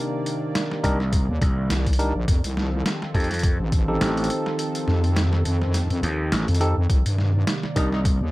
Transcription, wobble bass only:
1.29 1.39 D#2 loud
1.70 2.13 C2 loud
2.15 2.26 A#1 loud
2.28 2.42 F2 loud
2.44 2.84 C2 loud
3.60 3.99 A1 loud
4.88 5.43 F2 loud
5.45 5.88 F2 loud
5.90 6.01 F2 loud
6.48 6.74 F2 loud
6.77 6.88 F2 loud
6.90 7.03 C2 loud
7.06 7.45 G2 medium
8.21 8.31 D#2 loud

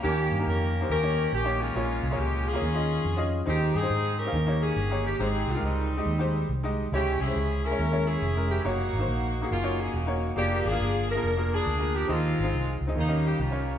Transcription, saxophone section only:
0.03 0.86 A#3 medium
0.03 0.48 C#4 medium
0.03 0.43 G4 medium
0.47 0.89 C#4 medium
0.47 0.89 G4 medium
0.47 0.89 A#4 medium
0.91 1.60 C#4 medium
0.91 1.33 G4 medium
0.91 1.30 A#4 loud
1.34 1.59 G4 medium
1.61 2.43 G#3 medium
1.61 2.43 C#4 medium
1.61 2.19 F4 medium
2.18 2.46 G4 medium
2.46 3.28 C#4 medium
2.46 3.29 F4 medium
2.46 3.32 G#4 medium
3.48 3.74 C4 medium
3.48 3.73 D#4 medium
3.48 3.74 G4 medium
3.75 4.29 C4 medium
3.75 4.29 D#4 medium
3.75 4.18 G#4 loud
4.18 4.59 C#4 medium
4.18 5.00 G4 medium
4.18 4.61 A#4 medium
4.60 5.15 C#4 medium
4.60 5.04 G#4 medium
5.06 5.19 G4 medium
5.20 5.63 C4 medium
5.20 5.63 D#4 medium
5.20 5.48 G#4 medium
5.49 5.63 F4 medium
5.64 6.46 G3 soft
5.64 6.45 C4 soft
5.64 6.46 D#4 medium
6.93 7.20 C#4 medium
6.93 7.19 E4 medium
6.93 7.19 G4 medium
7.20 7.62 C#4 medium
7.20 7.62 E4 medium
7.20 7.63 G#4 medium
7.63 8.05 C#4 medium
7.63 8.05 E4 medium
7.63 8.06 A#4 medium
8.06 8.60 C#4 medium
8.06 8.60 E4 medium
8.06 8.49 G#4 medium
8.50 8.63 G4 medium
8.65 9.47 A#3 medium
8.65 9.47 D#4 medium
8.65 9.47 F#4 medium
9.51 9.93 A#3 medium
9.51 10.33 C#4 medium
9.51 9.79 F4 medium
9.80 9.94 G#4 medium
9.94 10.34 A#3 medium
9.94 10.34 D#4 medium
9.94 10.30 F#4 medium
10.37 11.19 A#3 medium
10.37 10.64 D4 medium
10.37 10.63 G4 loud
10.65 11.08 D4 medium
10.65 11.09 G#4 loud
11.09 11.52 D4 medium
11.09 11.49 A#4 medium
11.53 12.06 D4 medium
11.53 11.96 G#4 medium
11.96 12.10 G4 medium
12.10 12.80 G#3 medium
12.10 12.80 C4 medium
12.10 12.74 F4 medium
12.97 13.78 G3 medium
12.97 13.39 A#3 medium
12.97 13.23 D#4 medium
13.26 13.39 G4 medium
13.40 13.78 A#3 medium
13.40 13.78 C#4 medium
13.40 13.76 F4 medium

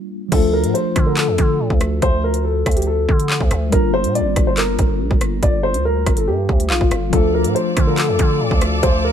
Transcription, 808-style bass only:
0.32 0.65 D2 loud
0.64 0.74 A2 loud
0.96 1.29 D3 loud
1.28 1.38 F2 loud
1.38 1.61 D3 loud
1.60 1.70 A2 loud
1.70 2.01 D2 loud
2.02 2.64 D2 loud
2.66 3.07 D2 loud
3.09 3.39 D3 loud
3.41 3.51 D2 loud
3.51 3.72 D2 loud
3.72 4.06 G1 loud
4.04 4.22 A#2 loud
4.20 4.35 G1 loud
4.36 4.77 G1 loud
4.79 5.02 G1 loud
5.00 5.10 A#1 loud
5.11 5.41 G1 loud
5.43 5.76 G1 loud
5.74 6.05 D2 loud
6.07 6.29 G1 loud
6.28 6.48 G2 loud
6.49 6.72 D2 loud
6.70 6.80 A#1 loud
6.81 6.91 G1 loud
6.92 7.12 G1 loud
7.13 7.46 D2 loud
7.45 7.55 A2 loud
7.77 8.10 D3 loud
8.09 8.19 F2 loud
8.19 8.42 D3 loud
8.40 8.51 A2 loud
8.51 8.82 D2 loud
8.83 9.12 D2 loud

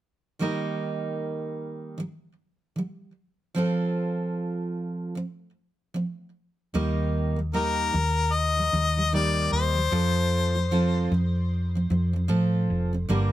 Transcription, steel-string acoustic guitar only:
0.39 1.96 D#3 medium
0.39 1.99 G3 medium
0.39 1.99 A#3 medium
0.39 2.00 D#4 medium
0.39 2.00 A#4 medium
1.98 2.32 D#3 soft
1.98 2.33 G3 medium
2.76 3.10 D#3 soft
2.76 3.12 G3 medium
3.55 5.14 F3 medium
3.55 5.15 C4 medium
3.55 5.16 F4 medium
3.55 5.17 A4 medium
5.15 5.49 F3 soft
5.15 5.50 C4 medium
5.94 6.28 F3 medium
5.94 6.29 C4 medium
6.74 7.35 D#3 medium
6.74 7.38 G3 medium
6.74 7.39 A#3 medium
6.74 7.38 D#4 medium
6.74 7.39 A#4 medium
7.36 7.52 D#3 soft
7.36 7.53 G3 soft
7.53 7.92 D#3 medium
7.53 7.94 G3 medium
7.53 7.94 A#3 medium
7.53 7.94 D#4 medium
7.53 7.94 A#4 medium
7.93 8.27 D#3 soft
7.93 8.28 G3 medium
8.57 8.71 D#3 soft
8.57 8.73 G3 soft
8.72 8.95 D#3 soft
8.72 8.97 G3 medium
8.97 9.12 D#3 soft
8.97 9.12 G3 medium
9.13 9.74 D#3 medium
9.13 9.76 G3 medium
9.13 9.77 A#3 medium
9.13 9.77 D#4 medium
9.13 9.77 A#4 medium
9.75 9.92 D#3 soft
9.75 9.91 G3 soft
9.91 10.54 F3 medium
9.91 10.55 C4 medium
9.91 10.56 F4 medium
9.91 10.56 A4 medium
10.55 10.70 F3 soft
10.55 10.71 C4 medium
10.71 11.11 F3 medium
10.71 11.12 C4 medium
10.71 11.12 F4 medium
10.71 11.12 A4 medium
11.12 11.45 F3 medium
11.12 11.46 C4 medium
11.75 11.89 F3 soft
11.75 11.90 C4 medium
11.90 12.12 F3 medium
11.90 12.15 C4 medium
12.13 12.27 F3 soft
12.13 12.28 C4 soft
12.28 12.92 F3 medium
12.28 12.93 C4 medium
12.28 12.94 F4 medium
12.28 12.94 A4 medium
12.93 13.09 F3 soft
12.93 13.09 C4 medium
13.09 13.32 G2 medium
13.09 13.32 D3 medium
13.09 13.32 G3 medium
13.09 13.32 A#3 medium
13.09 13.32 D4 medium
13.09 13.32 A#4 medium

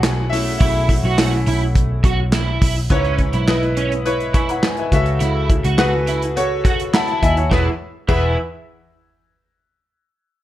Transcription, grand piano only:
0.00 0.31 A3 medium
0.00 0.32 C#4 medium
0.00 0.33 E4 medium
0.00 0.29 F#4 medium
0.00 2.92 G#4 medium
0.00 2.93 A4 medium
0.00 0.33 F#5 loud
0.00 2.93 G#5 loud
0.00 2.92 A5 loud
0.30 0.70 A3 medium
0.30 0.70 C#4 medium
0.30 0.59 E4 medium
0.30 0.57 E5 medium
0.58 1.17 E4 medium
0.58 2.28 E5 medium
1.17 1.43 A3 soft
1.17 1.44 C#4 soft
1.17 1.44 E4 medium
2.90 3.73 G#2 medium
2.90 3.45 E4 medium
2.90 3.45 B4 medium
2.90 3.45 C#5 medium
3.48 4.03 E4 medium
3.48 4.03 B4 medium
3.48 4.03 D#5 medium
4.05 4.60 E4 medium
4.05 4.34 B4 medium
4.05 4.35 C#5 medium
4.34 4.48 G#5 soft
4.34 4.48 C#6 medium
4.49 4.63 F#5 medium
4.49 4.63 B5 medium
4.64 4.77 D#5 medium
4.64 4.77 G#5 medium
4.78 5.05 B4 medium
4.78 4.92 E5 medium
4.92 5.75 C#3 medium
4.92 5.74 F#4 medium
4.92 5.75 A4 medium
4.92 5.75 E5 medium
5.78 6.33 F#4 medium
5.78 5.85 G#4 medium
5.78 6.33 B4 medium
5.85 6.35 A4 medium
6.36 6.91 F#4 medium
6.36 6.91 A4 medium
6.36 6.91 C#5 loud
6.93 7.07 F#5 soft
6.93 7.06 A5 medium
6.93 7.07 B5 medium
7.08 7.21 E5 medium
7.08 7.22 A5 medium
7.22 7.36 D#5 medium
7.22 7.49 E5 medium
7.22 7.36 G#5 medium
7.37 7.64 C#5 medium
7.37 7.64 F#5 medium
7.51 7.67 E2 medium
7.51 7.67 G#4 medium
7.51 7.67 B4 medium
7.51 7.67 E5 medium
8.08 8.35 E2 medium
8.08 8.35 G#4 medium
8.08 8.35 B4 medium
8.08 8.35 E5 loud

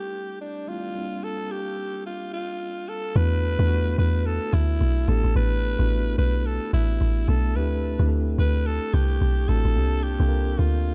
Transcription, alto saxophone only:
0.00 0.37 G4 loud
0.41 0.70 D4 medium
0.69 1.25 F4 loud
1.24 1.53 A4 loud
1.51 2.06 G4 loud
2.06 2.32 F4 medium
2.34 2.90 F4 loud
2.89 3.18 A4 loud
3.16 3.98 B4 loud
3.99 4.28 B4 loud
4.26 4.55 A4 loud
4.54 5.10 E4 loud
5.09 5.35 A4 loud
5.36 6.15 B4 loud
6.18 6.48 B4 loud
6.46 6.73 A4 loud
6.74 7.30 E4 medium
7.29 7.57 A4 loud
7.56 8.12 B4 loud
8.39 8.68 B4 loud
8.66 8.95 A4 loud
8.94 9.50 G4 loud
9.49 10.05 A4 loud
10.03 10.60 G4 loud
10.58 10.95 F4 medium

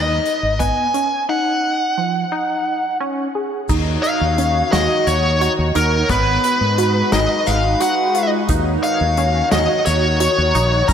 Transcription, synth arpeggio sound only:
0.00 0.45 D#4 medium
0.60 0.87 B3 medium
0.94 1.21 C#4 medium
1.29 1.82 D#4 medium
1.98 2.24 F3 medium
2.32 2.85 D#4 medium
3.00 3.27 C#4 medium
3.35 3.62 G#4 medium
3.69 4.23 D#4 medium
4.38 4.65 C#4 medium
4.72 5.26 F#4 medium
5.41 5.68 F#4 medium
5.75 6.02 D#4 medium
6.10 6.63 B3 medium
6.78 7.05 F#4 medium
7.12 7.66 D#4 medium
7.80 8.07 F#4 medium
8.15 8.42 F4 medium
8.49 9.03 D#4 medium
9.18 9.45 C#4 medium
9.52 10.06 F#4 medium
10.20 10.47 F#4 medium
10.55 10.82 D#4 medium
10.89 10.93 C#4 medium

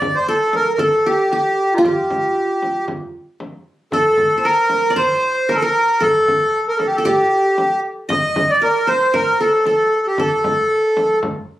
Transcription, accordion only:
0.00 0.16 D5 medium
0.15 0.27 C5 medium
0.28 0.55 A4 medium
0.55 0.72 A#4 medium
0.74 0.80 A#4 medium
0.82 1.08 A4 medium
1.09 1.33 G4 medium
1.35 1.74 G4 medium
1.73 1.78 D#4 medium
1.73 1.76 F4 medium
1.80 1.85 F4 medium
1.86 2.85 G4 medium
3.93 4.47 A4 medium
4.45 4.93 A#4 medium
4.97 5.51 C5 medium
5.49 5.57 A#4 medium
5.56 5.63 A4 medium
5.62 6.02 A#4 medium
6.01 6.65 A4 medium
6.68 6.78 A#4 medium
6.77 6.87 A4 medium
6.86 6.96 G4 medium
6.95 7.05 A4 medium
7.06 7.80 G4 medium
8.11 8.51 D#5 medium
8.50 8.63 D5 medium
8.63 8.89 A#4 medium
8.88 9.15 C5 medium
9.15 9.42 A#4 medium
9.40 9.65 A4 medium
9.66 10.07 A4 medium
10.07 10.20 G4 medium
10.20 11.19 A4 medium

